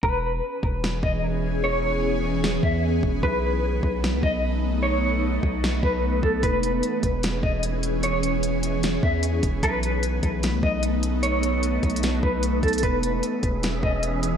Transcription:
<<
  \new Staff \with { instrumentName = "Clean electric guitar" } { \time 4/4 \key e \major \tempo 4 = 150 b'2~ b'8 dis''8 r4 | cis''2~ cis''8 e''8 r4 | b'2~ b'8 dis''8 r4 | cis''2~ cis''8 b'4 a'8 |
b'2~ b'8 dis''8 r4 | cis''2~ cis''8 e''8 r4 | b'2~ b'8 dis''8 r4 | cis''2~ cis''8 b'4 a'8 |
b'2~ b'8 dis''8 r4 | }
  \new Staff \with { instrumentName = "Synth texture" } { \time 4/4 \key e \major r1 | r1 | r1 | r1 |
r1 | r1 | r1 | r1 |
<cis' gis' e''>1 | }
  \new Staff \with { instrumentName = "Ambient pad" } { \time 4/4 \key e \major <e b cis' gis'>1~ | <e b cis' gis'>1 | <a dis'>1~ | <a dis'>1 |
<e cis' gis'>1~ | <e cis' gis'>1 | <a b dis'>1~ | <a b dis'>1 |
<e b cis' gis'>1 | }
  \new Staff \with { instrumentName = "808-style bass" } { \clef bass \time 4/4 \key e \major e,,4 r8 e,,4 e,,4.~ | e,,2~ e,,8 e,4 e,,8 | b,,4. b,,8. cis,16 b,,4.~ | b,,4. b,,4 b,,4 b,,8 |
e,,4 r8 e,,4 e,,4.~ | e,,2~ e,,8 e,4 e,,8 | b,,4. b,,8. cis,16 b,,4.~ | b,,4. b,,4 b,,4 b,,8 |
e,,4 r8 e,,4 e,,4. | }
  \new DrumStaff \with { instrumentName = "Drums" } \drummode { \time 4/4 bd4 r8 bd8 sn8 bd8 r4 | r4 r4 sn8 bd8 r8 bd8 | bd4 r8 bd8 sn8 bd8 r4 | r4 r8 bd8 sn8 bd8 r8 bd8 |
<hh bd>8 hh8 hh8 <hh bd>8 <hh sn>8 bd8 hh8 hh8 | hh8 hh8 hh8 hh8 <hh sn>8 bd8 hh8 <hh bd>8 | <hh bd>8 hh8 hh8 <hh bd>8 <hh sn>8 bd8 hh8 hh8 | hh8 hh8 \tuplet 3/2 { hh16 r16 r16 <hh bd>16 hh16 hh16 } <hh sn>8 bd8 hh8 <hh bd>32 hh32 hh32 hh32 |
<hh bd>8 hh8 hh8 <hh bd>8 <hh sn>8 bd8 hh8 hh8 | }
>>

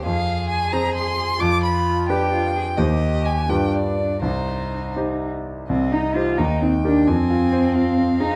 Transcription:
<<
  \new Staff \with { instrumentName = "Violin" } { \time 6/8 \key c \minor \tempo 4. = 87 f''4 aes''8 bes''8 c'''4 | d'''8 b''4 g''4. | ees''4 aes''8 g''8 d''4 | c''4. r4. |
ees''4. g''4. | aes''4. f''4. | }
  \new Staff \with { instrumentName = "Grand piano" } { \time 6/8 \key c \minor f,4. <c' aes' c''>4. | f,4. <d' g' b'>4. | <ees, ees' g' c''>4. <g, f' g' b'>4. | c,4. <ees' g' c''>4. |
c,8 ees'8 <g' c''>8 ees,8 ees'8 <g' bes'>8 | f,8 f'8 c''8 f'8 c'8 aes'8 | }
  \new Staff \with { instrumentName = "Cello" } { \time 6/8 \key c \minor aes'2. | f'4. g'8 f'8 aes'8 | g'4. d'4. | ees'2~ ees'16 r8. |
c'8 ees'8 f'8 ees'8 c'8 d'8 | c'2~ c'8 ees'8 | }
>>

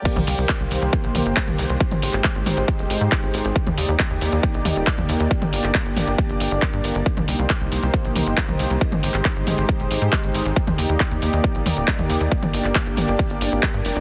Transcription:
<<
  \new Staff \with { instrumentName = "Analog synth bass" } { \clef bass \time 4/4 \key c \minor \tempo 4 = 137 r16 c,16 c,16 c,16 r16 c,16 c,16 c,16 r16 bes,,16 c,16 g,,16 r16 c,16 c,16 c,16 | r16 aes,,16 aes,,16 aes,,16 r16 aes,,16 aes,,16 aes,,16 r16 ees,,16 aes,,16 aes,16 r16 aes,,16 aes,,16 aes,,16 | r16 ees,16 ees,16 ees,16 r16 ees,16 ees,16 ees,16 r16 bes,,16 ees,16 ees,,16 r16 ees,16 ees,16 ees,16 | r16 g,,16 g,,16 g,,16 r16 g,,16 g,,16 g,,16 r16 f,,16 g,,16 g,,16 r16 g,16 g,,16 g,,16 |
r16 c,16 c,16 c,16 r16 c,16 c,16 c,16 r16 bes,,16 c,16 g,,16 r16 c,16 c,16 c,16 | r16 aes,,16 aes,,16 aes,,16 r16 aes,,16 aes,,16 aes,,16 r16 ees,,16 aes,,16 aes,16 r16 aes,,16 aes,,16 aes,,16 | r16 ees,16 ees,16 ees,16 r16 ees,16 ees,16 ees,16 r16 bes,,16 ees,16 ees,,16 r16 ees,16 ees,16 ees,16 | r16 g,,16 g,,16 g,,16 r16 g,,16 g,,16 g,,16 r16 g,,16 g,,16 aes,,16 r16 g,16 f,,16 g,,16 | }
  \new DrumStaff \with { instrumentName = "Drums" } \drummode { \time 4/4 <cymc hh bd>16 <hh toml>16 hho16 hh16 <hc hh bd>16 hh16 hho16 hh16 <hh bd>16 hh16 <hho toml>16 hh16 <hc hh bd>16 <hh toml>16 hho16 hh16 | <hh bd>16 <hh toml>16 hho16 <hc hh>16 <hc hh bd>16 hh16 <hho toml>16 hh16 <hh bd>16 hh16 hho16 hh16 <hc hh bd>16 hh16 hho16 hh16 | <hh bd>16 <hh toml>16 hho16 hh16 <hc hh bd>16 hh16 hho16 hh16 <hh bd>16 hh16 <hho toml>16 hh16 <hc hh bd>16 <hh toml>16 hho16 hh16 | <hh bd>16 <hh toml>16 hho16 <hc hh>16 <hc hh bd>16 hh16 <hho toml>16 hh16 <hh bd>16 hh16 hho16 hh16 <hc hh bd>16 hh16 hho16 hh16 |
<hh bd>16 <hh toml>16 hho16 hh16 <hc hh bd>16 hh16 hho16 hh16 <hh bd>16 hh16 <hho toml>16 hh16 <hc hh bd>16 <hh toml>16 hho16 hh16 | <hh bd>16 <hh toml>16 hho16 <hc hh>16 <hc hh bd>16 hh16 <hho toml>16 hh16 <hh bd>16 hh16 hho16 hh16 <hc hh bd>16 hh16 hho16 hh16 | <hh bd>16 <hh toml>16 hho16 hh16 <hc hh bd>16 hh16 hho16 hh16 <hh bd>16 hh16 <hho toml>16 hh16 <hc hh bd>16 <hh toml>16 hho16 hh16 | <hh bd>16 <hh toml>16 hho16 <hc hh>16 <hc hh bd>16 hh16 <hho toml>16 hh16 <hh bd>16 hh16 hho16 hh16 <hc hh bd>16 hh16 hho16 hh16 | }
>>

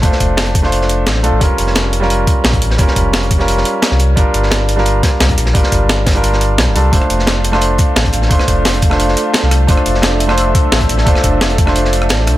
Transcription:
<<
  \new Staff \with { instrumentName = "Analog synth pad" } { \time 4/4 \key f \major \tempo 4 = 174 << { r1 | r1 | r1 | r1 |
r1 | f''1~ | f''1 | e''1~ |
e''1 | } \\ { r1 | r1 | r1 | r1 |
r1 | <d' a'>1~ | <d' a'>1~ | <d' a'>1~ |
<d' a'>1 | } >> }
  \new Staff \with { instrumentName = "Grand piano" } { \time 4/4 \key f \major <a d' f' c''>4.~ <a d' f' c''>16 <a d' f' c''>4.~ <a d' f' c''>16 <a d' f' a'>8 | <g des' f' bes'>4.~ <g des' f' bes'>16 <g des' f' bes'>2~ <g des' f' bes'>16 | <g des' f' bes'>4.~ <g des' f' bes'>16 <g des' f' bes'>2~ <g des' f' bes'>16 | <g d' f' bes'>4.~ <g d' f' bes'>16 <g d' f' bes'>2~ <g d' f' bes'>16 |
<g d' f' bes'>4.~ <g d' f' bes'>16 <g d' f' bes'>4.~ <g d' f' bes'>16 <g d' f' a'>8 | <a d' f' c''>4.~ <a d' f' c''>16 <a d' f' c''>2~ <a d' f' c''>16 | <a d' f' c''>4.~ <a d' f' c''>16 <a d' f' c''>2~ <a d' f' c''>16 | <a d' f' c''>4.~ <a d' f' c''>16 <a d' f' c''>2~ <a d' f' c''>16 |
<a d' f' c''>4.~ <a d' f' c''>16 <a d' f' c''>2~ <a d' f' c''>16 | }
  \new Staff \with { instrumentName = "Sub bass" } { \clef bass \time 4/4 \key f \major f,,16 r16 f,,2~ f,,8 a,,8 c,16 a,,16 | f,,16 r16 f,,2 r8 bes,,8 a,,8 | f,,16 r16 f,,2 r8. c,8. | g,,16 r16 g,,2 r8 c,8 bes,,8 |
g,,16 r16 g,,2~ g,,8 c,16 f,,16 c,8 | f,,16 r16 f,,2 r8 a,,8 a,,8 | f,,16 r16 f,,2 r8. c,8. | f,,16 r16 f,,2 r8 a,,8 a,,8 |
f,,16 r16 f,,2~ f,,8 a,,8 c,16 r16 | }
  \new DrumStaff \with { instrumentName = "Drums" } \drummode { \time 4/4 <hh bd>16 sn16 <hh bd>8 <hh sn>16 hh16 <hh bd>16 sn16 hh16 sn16 hh8 <hh sn>16 sn16 hh8 | <hh bd>8 hh16 sn16 <hh sn>8 hh16 sn16 hh8 <hh bd>8 <hh hho sn>16 <hh bd>16 hh16 sn16 | <hh bd>16 sn16 <hh bd>8 <hh sn>16 hh16 <hh bd>16 sn16 hh16 sn16 hh8 <hh sn>16 sn16 hh8 | <hh bd>8 hh16 sn16 <hh sn>8 hh16 sn16 hh8 <hh bd sn>8 <hh sn>16 <hh bd>16 hh16 sn16 |
<hh bd>16 sn16 <hh bd>8 <hh sn>8 <hh hho bd sn>16 hh16 hh16 sn16 hh8 <hh sn>8 hh8 | <hh bd>16 ss16 hh16 sn16 <hh sn>8 hh16 <ss sn>16 hh8 <hh bd>8 <hh hho sn>16 <hh bd>16 hh16 sn16 | <hh bd>16 <ss sn>16 <hh bd>8 <hh sn>16 hh16 <hh bd>16 <ss sn>16 hh16 sn16 hh8 <hh sn>16 sn16 <hh ss>8 | <hh bd>16 ss16 hh16 sn16 <hh sn>8 hh16 <ss sn>16 hh8 <hh bd>8 <hh hho sn>16 <hh bd>16 hh16 sn16 |
<hh bd>16 <ss sn>16 <hh bd>8 <hh sn>16 hh16 <hh bd>16 <ss sn>16 hh16 sn16 hh16 ss16 <hh sn>16 sn16 <hh ss>8 | }
>>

